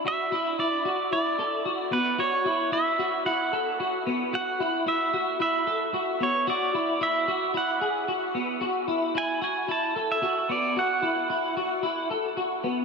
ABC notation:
X:1
M:4/4
L:1/16
Q:1/4=112
K:Dlyd
V:1 name="Pedal steel guitar"
e4 d4 d6 B2 | c4 e4 f6 z2 | f4 e4 e6 c2 | d4 e4 f6 z2 |
z4 g2 g2 a3 e3 d2 | f8 z8 |]
V:2 name="Clean electric guitar"
F2 E2 E2 F2 E2 A2 F2 B,2 | F2 E2 E2 F2 E2 A2 F2 B,2 | F2 E2 E2 F2 E2 A2 F2 B,2 | F2 E2 E2 F2 E2 G2 F2 B,2 |
F2 E2 E2 F2 E2 A2 F2 B,2 | F2 E2 E2 F2 E2 A2 F2 B,2 |]